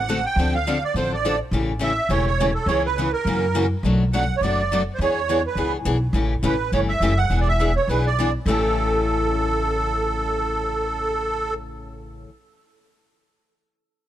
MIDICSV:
0, 0, Header, 1, 4, 480
1, 0, Start_track
1, 0, Tempo, 289296
1, 607, Time_signature, 4, 2, 24, 8
1, 23367, End_track
2, 0, Start_track
2, 0, Title_t, "Accordion"
2, 0, Program_c, 0, 21
2, 0, Note_on_c, 0, 78, 84
2, 422, Note_off_c, 0, 78, 0
2, 425, Note_on_c, 0, 79, 88
2, 905, Note_off_c, 0, 79, 0
2, 908, Note_on_c, 0, 77, 85
2, 1386, Note_off_c, 0, 77, 0
2, 1396, Note_on_c, 0, 74, 76
2, 1571, Note_off_c, 0, 74, 0
2, 1608, Note_on_c, 0, 72, 69
2, 1865, Note_off_c, 0, 72, 0
2, 1887, Note_on_c, 0, 74, 73
2, 2309, Note_off_c, 0, 74, 0
2, 3026, Note_on_c, 0, 76, 86
2, 3492, Note_on_c, 0, 73, 82
2, 3508, Note_off_c, 0, 76, 0
2, 3736, Note_off_c, 0, 73, 0
2, 3761, Note_on_c, 0, 73, 84
2, 4203, Note_off_c, 0, 73, 0
2, 4218, Note_on_c, 0, 69, 74
2, 4431, Note_on_c, 0, 73, 86
2, 4439, Note_off_c, 0, 69, 0
2, 4688, Note_off_c, 0, 73, 0
2, 4738, Note_on_c, 0, 71, 79
2, 5171, Note_off_c, 0, 71, 0
2, 5189, Note_on_c, 0, 70, 78
2, 6082, Note_off_c, 0, 70, 0
2, 6849, Note_on_c, 0, 78, 89
2, 7234, Note_off_c, 0, 78, 0
2, 7240, Note_on_c, 0, 73, 59
2, 7321, Note_on_c, 0, 74, 71
2, 7329, Note_off_c, 0, 73, 0
2, 8018, Note_off_c, 0, 74, 0
2, 8204, Note_on_c, 0, 72, 59
2, 8291, Note_off_c, 0, 72, 0
2, 8325, Note_on_c, 0, 73, 82
2, 9001, Note_off_c, 0, 73, 0
2, 9072, Note_on_c, 0, 71, 72
2, 9498, Note_off_c, 0, 71, 0
2, 10695, Note_on_c, 0, 71, 71
2, 11133, Note_off_c, 0, 71, 0
2, 11171, Note_on_c, 0, 73, 71
2, 11290, Note_off_c, 0, 73, 0
2, 11423, Note_on_c, 0, 76, 92
2, 11905, Note_on_c, 0, 78, 93
2, 11920, Note_off_c, 0, 76, 0
2, 12266, Note_off_c, 0, 78, 0
2, 12296, Note_on_c, 0, 74, 70
2, 12408, Note_off_c, 0, 74, 0
2, 12417, Note_on_c, 0, 76, 85
2, 12851, Note_off_c, 0, 76, 0
2, 12881, Note_on_c, 0, 73, 77
2, 13089, Note_off_c, 0, 73, 0
2, 13090, Note_on_c, 0, 71, 68
2, 13363, Note_off_c, 0, 71, 0
2, 13378, Note_on_c, 0, 74, 71
2, 13811, Note_off_c, 0, 74, 0
2, 14056, Note_on_c, 0, 69, 78
2, 19151, Note_off_c, 0, 69, 0
2, 23367, End_track
3, 0, Start_track
3, 0, Title_t, "Steel-string acoustic guitar"
3, 0, Program_c, 1, 25
3, 143, Note_on_c, 1, 50, 81
3, 155, Note_on_c, 1, 60, 83
3, 158, Note_on_c, 1, 57, 72
3, 162, Note_on_c, 1, 66, 89
3, 163, Note_on_c, 1, 69, 81
3, 304, Note_off_c, 1, 50, 0
3, 310, Note_off_c, 1, 60, 0
3, 312, Note_off_c, 1, 57, 0
3, 314, Note_off_c, 1, 66, 0
3, 314, Note_off_c, 1, 69, 0
3, 641, Note_on_c, 1, 53, 66
3, 644, Note_on_c, 1, 50, 60
3, 651, Note_on_c, 1, 60, 64
3, 658, Note_on_c, 1, 62, 68
3, 664, Note_on_c, 1, 69, 60
3, 931, Note_off_c, 1, 53, 0
3, 933, Note_off_c, 1, 50, 0
3, 936, Note_off_c, 1, 60, 0
3, 940, Note_off_c, 1, 62, 0
3, 943, Note_off_c, 1, 69, 0
3, 1113, Note_on_c, 1, 50, 79
3, 1117, Note_on_c, 1, 53, 80
3, 1120, Note_on_c, 1, 62, 84
3, 1122, Note_on_c, 1, 60, 89
3, 1134, Note_on_c, 1, 69, 82
3, 1268, Note_off_c, 1, 50, 0
3, 1270, Note_off_c, 1, 53, 0
3, 1272, Note_off_c, 1, 62, 0
3, 1273, Note_off_c, 1, 60, 0
3, 1279, Note_off_c, 1, 69, 0
3, 1587, Note_on_c, 1, 50, 56
3, 1598, Note_on_c, 1, 53, 57
3, 1604, Note_on_c, 1, 60, 63
3, 1620, Note_on_c, 1, 62, 60
3, 1622, Note_on_c, 1, 69, 66
3, 1884, Note_off_c, 1, 50, 0
3, 1889, Note_off_c, 1, 53, 0
3, 1892, Note_off_c, 1, 60, 0
3, 1900, Note_off_c, 1, 62, 0
3, 1901, Note_off_c, 1, 69, 0
3, 2070, Note_on_c, 1, 50, 75
3, 2077, Note_on_c, 1, 53, 84
3, 2080, Note_on_c, 1, 60, 90
3, 2087, Note_on_c, 1, 69, 90
3, 2089, Note_on_c, 1, 62, 82
3, 2225, Note_off_c, 1, 50, 0
3, 2229, Note_off_c, 1, 53, 0
3, 2231, Note_off_c, 1, 60, 0
3, 2234, Note_off_c, 1, 69, 0
3, 2235, Note_off_c, 1, 62, 0
3, 2537, Note_on_c, 1, 49, 57
3, 2538, Note_on_c, 1, 52, 62
3, 2547, Note_on_c, 1, 57, 67
3, 2555, Note_on_c, 1, 61, 72
3, 2556, Note_on_c, 1, 67, 67
3, 2837, Note_off_c, 1, 49, 0
3, 2838, Note_off_c, 1, 52, 0
3, 2842, Note_off_c, 1, 57, 0
3, 2846, Note_off_c, 1, 61, 0
3, 2847, Note_off_c, 1, 67, 0
3, 2976, Note_on_c, 1, 49, 70
3, 2995, Note_on_c, 1, 57, 80
3, 2997, Note_on_c, 1, 52, 72
3, 2999, Note_on_c, 1, 61, 83
3, 3011, Note_on_c, 1, 67, 80
3, 3158, Note_off_c, 1, 49, 0
3, 3167, Note_off_c, 1, 57, 0
3, 3168, Note_off_c, 1, 52, 0
3, 3169, Note_off_c, 1, 61, 0
3, 3176, Note_off_c, 1, 67, 0
3, 3481, Note_on_c, 1, 49, 64
3, 3485, Note_on_c, 1, 52, 68
3, 3494, Note_on_c, 1, 57, 68
3, 3498, Note_on_c, 1, 67, 69
3, 3501, Note_on_c, 1, 61, 65
3, 3788, Note_off_c, 1, 49, 0
3, 3790, Note_off_c, 1, 52, 0
3, 3795, Note_off_c, 1, 57, 0
3, 3797, Note_off_c, 1, 67, 0
3, 3799, Note_off_c, 1, 61, 0
3, 3987, Note_on_c, 1, 49, 76
3, 3993, Note_on_c, 1, 52, 79
3, 3993, Note_on_c, 1, 57, 86
3, 3998, Note_on_c, 1, 67, 87
3, 4000, Note_on_c, 1, 61, 91
3, 4143, Note_off_c, 1, 49, 0
3, 4145, Note_off_c, 1, 52, 0
3, 4146, Note_off_c, 1, 57, 0
3, 4148, Note_off_c, 1, 67, 0
3, 4149, Note_off_c, 1, 61, 0
3, 4457, Note_on_c, 1, 49, 61
3, 4457, Note_on_c, 1, 52, 68
3, 4464, Note_on_c, 1, 59, 62
3, 4472, Note_on_c, 1, 61, 64
3, 4477, Note_on_c, 1, 68, 66
3, 4756, Note_off_c, 1, 49, 0
3, 4756, Note_off_c, 1, 52, 0
3, 4759, Note_off_c, 1, 59, 0
3, 4763, Note_off_c, 1, 61, 0
3, 4766, Note_off_c, 1, 68, 0
3, 4943, Note_on_c, 1, 49, 76
3, 4957, Note_on_c, 1, 52, 77
3, 4960, Note_on_c, 1, 59, 76
3, 4967, Note_on_c, 1, 68, 81
3, 4969, Note_on_c, 1, 61, 76
3, 5100, Note_off_c, 1, 49, 0
3, 5107, Note_off_c, 1, 52, 0
3, 5108, Note_off_c, 1, 59, 0
3, 5112, Note_off_c, 1, 68, 0
3, 5113, Note_off_c, 1, 61, 0
3, 5425, Note_on_c, 1, 49, 62
3, 5426, Note_on_c, 1, 52, 58
3, 5431, Note_on_c, 1, 58, 65
3, 5431, Note_on_c, 1, 61, 61
3, 5448, Note_on_c, 1, 66, 66
3, 5719, Note_off_c, 1, 49, 0
3, 5720, Note_off_c, 1, 52, 0
3, 5722, Note_off_c, 1, 61, 0
3, 5723, Note_off_c, 1, 58, 0
3, 5731, Note_off_c, 1, 66, 0
3, 5887, Note_on_c, 1, 52, 85
3, 5891, Note_on_c, 1, 49, 84
3, 5897, Note_on_c, 1, 58, 81
3, 5910, Note_on_c, 1, 61, 84
3, 5914, Note_on_c, 1, 66, 86
3, 6051, Note_off_c, 1, 52, 0
3, 6053, Note_off_c, 1, 49, 0
3, 6056, Note_off_c, 1, 58, 0
3, 6063, Note_off_c, 1, 61, 0
3, 6065, Note_off_c, 1, 66, 0
3, 6380, Note_on_c, 1, 47, 61
3, 6389, Note_on_c, 1, 54, 66
3, 6400, Note_on_c, 1, 57, 65
3, 6400, Note_on_c, 1, 66, 63
3, 6405, Note_on_c, 1, 62, 67
3, 6677, Note_off_c, 1, 47, 0
3, 6681, Note_off_c, 1, 54, 0
3, 6686, Note_off_c, 1, 57, 0
3, 6687, Note_off_c, 1, 66, 0
3, 6689, Note_off_c, 1, 62, 0
3, 6859, Note_on_c, 1, 47, 77
3, 6868, Note_on_c, 1, 54, 85
3, 6872, Note_on_c, 1, 57, 77
3, 6875, Note_on_c, 1, 62, 84
3, 6884, Note_on_c, 1, 66, 76
3, 7017, Note_off_c, 1, 47, 0
3, 7021, Note_off_c, 1, 54, 0
3, 7024, Note_off_c, 1, 57, 0
3, 7025, Note_off_c, 1, 62, 0
3, 7029, Note_off_c, 1, 66, 0
3, 7346, Note_on_c, 1, 47, 60
3, 7353, Note_on_c, 1, 54, 58
3, 7365, Note_on_c, 1, 57, 68
3, 7374, Note_on_c, 1, 66, 73
3, 7375, Note_on_c, 1, 62, 60
3, 7639, Note_off_c, 1, 47, 0
3, 7643, Note_off_c, 1, 54, 0
3, 7649, Note_off_c, 1, 57, 0
3, 7653, Note_off_c, 1, 66, 0
3, 7654, Note_off_c, 1, 62, 0
3, 7829, Note_on_c, 1, 47, 75
3, 7830, Note_on_c, 1, 54, 77
3, 7845, Note_on_c, 1, 62, 91
3, 7848, Note_on_c, 1, 57, 91
3, 7852, Note_on_c, 1, 66, 83
3, 7982, Note_off_c, 1, 47, 0
3, 7982, Note_off_c, 1, 54, 0
3, 7989, Note_off_c, 1, 62, 0
3, 7991, Note_off_c, 1, 57, 0
3, 7993, Note_off_c, 1, 66, 0
3, 8314, Note_on_c, 1, 52, 55
3, 8321, Note_on_c, 1, 59, 61
3, 8322, Note_on_c, 1, 62, 59
3, 8333, Note_on_c, 1, 68, 67
3, 8603, Note_off_c, 1, 52, 0
3, 8607, Note_off_c, 1, 59, 0
3, 8607, Note_off_c, 1, 62, 0
3, 8613, Note_off_c, 1, 68, 0
3, 8779, Note_on_c, 1, 52, 80
3, 8790, Note_on_c, 1, 59, 80
3, 8794, Note_on_c, 1, 62, 82
3, 8804, Note_on_c, 1, 68, 82
3, 8936, Note_off_c, 1, 52, 0
3, 8942, Note_off_c, 1, 59, 0
3, 8944, Note_off_c, 1, 62, 0
3, 8949, Note_off_c, 1, 68, 0
3, 9244, Note_on_c, 1, 52, 56
3, 9252, Note_on_c, 1, 62, 66
3, 9256, Note_on_c, 1, 59, 65
3, 9260, Note_on_c, 1, 68, 70
3, 9548, Note_off_c, 1, 52, 0
3, 9552, Note_off_c, 1, 62, 0
3, 9554, Note_off_c, 1, 59, 0
3, 9556, Note_off_c, 1, 68, 0
3, 9713, Note_on_c, 1, 52, 79
3, 9713, Note_on_c, 1, 59, 93
3, 9724, Note_on_c, 1, 62, 84
3, 9731, Note_on_c, 1, 68, 89
3, 9883, Note_off_c, 1, 52, 0
3, 9884, Note_off_c, 1, 59, 0
3, 9889, Note_off_c, 1, 62, 0
3, 9892, Note_off_c, 1, 68, 0
3, 10189, Note_on_c, 1, 49, 65
3, 10191, Note_on_c, 1, 52, 59
3, 10196, Note_on_c, 1, 57, 64
3, 10209, Note_on_c, 1, 61, 69
3, 10212, Note_on_c, 1, 67, 67
3, 10500, Note_off_c, 1, 49, 0
3, 10501, Note_off_c, 1, 52, 0
3, 10504, Note_off_c, 1, 57, 0
3, 10511, Note_off_c, 1, 61, 0
3, 10512, Note_off_c, 1, 67, 0
3, 10664, Note_on_c, 1, 49, 72
3, 10677, Note_on_c, 1, 52, 79
3, 10681, Note_on_c, 1, 57, 74
3, 10681, Note_on_c, 1, 61, 88
3, 10690, Note_on_c, 1, 67, 87
3, 10839, Note_off_c, 1, 49, 0
3, 10845, Note_off_c, 1, 52, 0
3, 10847, Note_off_c, 1, 61, 0
3, 10848, Note_off_c, 1, 57, 0
3, 10852, Note_off_c, 1, 67, 0
3, 11158, Note_on_c, 1, 49, 60
3, 11167, Note_on_c, 1, 52, 62
3, 11168, Note_on_c, 1, 57, 68
3, 11169, Note_on_c, 1, 61, 62
3, 11170, Note_on_c, 1, 67, 68
3, 11465, Note_off_c, 1, 49, 0
3, 11470, Note_off_c, 1, 52, 0
3, 11470, Note_off_c, 1, 57, 0
3, 11470, Note_off_c, 1, 61, 0
3, 11471, Note_off_c, 1, 67, 0
3, 11648, Note_on_c, 1, 52, 81
3, 11652, Note_on_c, 1, 49, 76
3, 11660, Note_on_c, 1, 57, 78
3, 11667, Note_on_c, 1, 61, 87
3, 11673, Note_on_c, 1, 67, 94
3, 11811, Note_off_c, 1, 52, 0
3, 11813, Note_off_c, 1, 49, 0
3, 11817, Note_off_c, 1, 57, 0
3, 11820, Note_off_c, 1, 61, 0
3, 11823, Note_off_c, 1, 67, 0
3, 12119, Note_on_c, 1, 52, 60
3, 12125, Note_on_c, 1, 59, 60
3, 12140, Note_on_c, 1, 62, 65
3, 12145, Note_on_c, 1, 68, 66
3, 12425, Note_off_c, 1, 52, 0
3, 12429, Note_off_c, 1, 59, 0
3, 12436, Note_off_c, 1, 62, 0
3, 12439, Note_off_c, 1, 68, 0
3, 12601, Note_on_c, 1, 52, 76
3, 12612, Note_on_c, 1, 59, 75
3, 12624, Note_on_c, 1, 68, 78
3, 12630, Note_on_c, 1, 62, 83
3, 12768, Note_off_c, 1, 52, 0
3, 12773, Note_off_c, 1, 59, 0
3, 12779, Note_off_c, 1, 68, 0
3, 12782, Note_off_c, 1, 62, 0
3, 13095, Note_on_c, 1, 52, 60
3, 13105, Note_on_c, 1, 59, 59
3, 13118, Note_on_c, 1, 62, 65
3, 13127, Note_on_c, 1, 68, 66
3, 13394, Note_off_c, 1, 52, 0
3, 13399, Note_off_c, 1, 59, 0
3, 13405, Note_off_c, 1, 62, 0
3, 13409, Note_off_c, 1, 68, 0
3, 13584, Note_on_c, 1, 52, 83
3, 13602, Note_on_c, 1, 59, 74
3, 13605, Note_on_c, 1, 62, 84
3, 13620, Note_on_c, 1, 68, 93
3, 13739, Note_off_c, 1, 52, 0
3, 13748, Note_off_c, 1, 59, 0
3, 13750, Note_off_c, 1, 62, 0
3, 13757, Note_off_c, 1, 68, 0
3, 14041, Note_on_c, 1, 45, 73
3, 14064, Note_on_c, 1, 49, 80
3, 14072, Note_on_c, 1, 52, 79
3, 14078, Note_on_c, 1, 57, 78
3, 14091, Note_on_c, 1, 61, 87
3, 14109, Note_on_c, 1, 67, 80
3, 20372, Note_off_c, 1, 45, 0
3, 20383, Note_off_c, 1, 49, 0
3, 20387, Note_off_c, 1, 52, 0
3, 20390, Note_off_c, 1, 57, 0
3, 20397, Note_off_c, 1, 61, 0
3, 20406, Note_off_c, 1, 67, 0
3, 23367, End_track
4, 0, Start_track
4, 0, Title_t, "Upright bass"
4, 0, Program_c, 2, 32
4, 0, Note_on_c, 2, 33, 73
4, 413, Note_off_c, 2, 33, 0
4, 597, Note_on_c, 2, 38, 80
4, 1368, Note_off_c, 2, 38, 0
4, 1562, Note_on_c, 2, 33, 71
4, 2330, Note_off_c, 2, 33, 0
4, 2512, Note_on_c, 2, 33, 84
4, 3283, Note_off_c, 2, 33, 0
4, 3467, Note_on_c, 2, 28, 72
4, 4240, Note_off_c, 2, 28, 0
4, 4417, Note_on_c, 2, 37, 85
4, 5193, Note_off_c, 2, 37, 0
4, 5389, Note_on_c, 2, 42, 77
4, 6160, Note_off_c, 2, 42, 0
4, 6356, Note_on_c, 2, 35, 83
4, 7124, Note_off_c, 2, 35, 0
4, 7313, Note_on_c, 2, 30, 70
4, 8082, Note_off_c, 2, 30, 0
4, 8271, Note_on_c, 2, 40, 86
4, 9041, Note_off_c, 2, 40, 0
4, 9216, Note_on_c, 2, 37, 71
4, 9632, Note_off_c, 2, 37, 0
4, 9707, Note_on_c, 2, 35, 70
4, 10119, Note_off_c, 2, 35, 0
4, 10170, Note_on_c, 2, 33, 89
4, 10565, Note_off_c, 2, 33, 0
4, 10664, Note_on_c, 2, 33, 75
4, 11077, Note_off_c, 2, 33, 0
4, 11149, Note_on_c, 2, 31, 72
4, 11560, Note_off_c, 2, 31, 0
4, 11620, Note_on_c, 2, 30, 77
4, 12035, Note_off_c, 2, 30, 0
4, 12108, Note_on_c, 2, 28, 80
4, 12880, Note_off_c, 2, 28, 0
4, 13067, Note_on_c, 2, 35, 75
4, 13839, Note_off_c, 2, 35, 0
4, 14031, Note_on_c, 2, 33, 85
4, 20300, Note_off_c, 2, 33, 0
4, 23367, End_track
0, 0, End_of_file